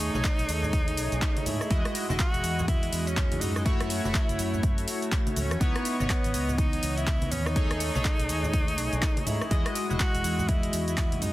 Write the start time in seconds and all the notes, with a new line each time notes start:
Already playing: A3 D#4 G#4 C#5 D#5
0.00 open hi-hat, shaker
0.14 B1 A3 D#4 G#4 C#5, high conga, shaker
0.24 kick, clap, closed hi-hat, shaker
0.39 B1, closed hi-hat, shaker
0.49 D#2, open hi-hat, shaker
0.63 low conga, shaker
0.73 kick, closed hi-hat, high conga, shaker
0.88 closed hi-hat
0.97 B1, open hi-hat, shaker
1.12 B1, closed hi-hat, shaker
1.22 kick, clap, closed hi-hat, shaker
1.37 closed hi-hat, high conga
1.46 G#2 E4, open hi-hat, low conga, shaker
1.61 cross-stick, shaker
1.70 E2 G#3 E4 F#4 D#5, kick, closed hi-hat, shaker
1.85 cross-stick, closed hi-hat
1.95 open hi-hat, shaker
2.09 E1 G#3 E4 F#4 D#5, high conga, shaker
2.19 F#4, kick, clap, closed hi-hat, shaker
2.34 E1, closed hi-hat, shaker
2.44 E2, open hi-hat, shaker
2.59 low conga, shaker
2.68 E4, kick, closed hi-hat, high conga, shaker
2.83 closed hi-hat
2.93 E2, open hi-hat, shaker
3.07 C#4, closed hi-hat, shaker
3.17 kick, clap, closed hi-hat, shaker
3.32 closed hi-hat, high conga
3.41 F#2 D#4, open hi-hat, low conga, shaker
3.56 cross-stick, shaker
3.65 A3 E4 F#4 C#5 E5, kick, closed hi-hat, shaker
3.80 F#2, cross-stick, closed hi-hat, shaker
3.90 open hi-hat, shaker
4.04 F#1 A3 E4 F#4 C#5, high conga, shaker
4.15 kick, clap, closed hi-hat, shaker
4.29 F#1, closed hi-hat, shaker
4.39 F#2, open hi-hat, shaker
4.54 low conga, shaker
4.63 kick, closed hi-hat, high conga, shaker
4.78 closed hi-hat, shaker
4.88 open hi-hat, shaker
5.02 closed hi-hat, shaker
5.12 kick, clap, closed hi-hat, shaker
5.27 closed hi-hat, high conga, shaker
5.36 C#2 C#4, open hi-hat, low conga, shaker
5.51 E2, cross-stick, closed hi-hat, shaker
5.60 E3 B3 D#4 E4 C#5 D#5, kick, closed hi-hat, shaker
5.76 cross-stick, closed hi-hat
5.85 open hi-hat, shaker
5.99 G#1 E3 B3 C#5 D#5, high conga, shaker
6.10 B3, kick, clap, closed hi-hat, shaker
6.24 G#1, closed hi-hat, shaker
6.34 C#2, open hi-hat, shaker
6.49 low conga, shaker
6.58 D#4, kick, closed hi-hat, high conga, shaker
6.73 closed hi-hat
6.83 C#2, open hi-hat, shaker
6.97 E4, closed hi-hat, shaker
7.07 kick, clap, closed hi-hat, shaker
7.22 closed hi-hat, high conga
7.31 D#2 C#4, open hi-hat, low conga, shaker
7.46 D#4, cross-stick, shaker
7.55 A3 D#4 G#4 C#5 D#5, kick, closed hi-hat, shaker
7.71 D#2, cross-stick, closed hi-hat
7.80 open hi-hat, shaker
7.94 B1 A3 D#4 G#4 C#5, high conga, shaker
8.05 kick, clap, closed hi-hat, shaker
8.19 B1, closed hi-hat, shaker
8.29 D#2, open hi-hat, shaker
8.43 low conga, shaker
8.53 kick, closed hi-hat, high conga, shaker
8.68 closed hi-hat
8.78 B1, open hi-hat, shaker
8.93 B1, closed hi-hat, shaker
9.02 kick, clap, closed hi-hat, shaker
9.17 closed hi-hat, high conga
9.27 G#2 E4, open hi-hat, low conga, shaker
9.41 cross-stick, shaker
9.51 E2 G#3 E4 F#4 D#5, kick, closed hi-hat, shaker
9.66 cross-stick, closed hi-hat
9.75 open hi-hat, shaker
9.89 E1 G#3 E4 F#4 D#5, high conga, shaker
10.00 F#4, kick, clap, closed hi-hat, shaker
10.15 E1, closed hi-hat, shaker
10.24 E2, open hi-hat, shaker
10.39 low conga, shaker
10.48 E4, kick, closed hi-hat, high conga, shaker
10.63 closed hi-hat
10.73 E2, open hi-hat, shaker
10.88 E4, closed hi-hat, shaker
10.97 kick, clap, closed hi-hat, shaker
11.12 closed hi-hat, high conga
11.22 F#2 D#4, open hi-hat, low conga, shaker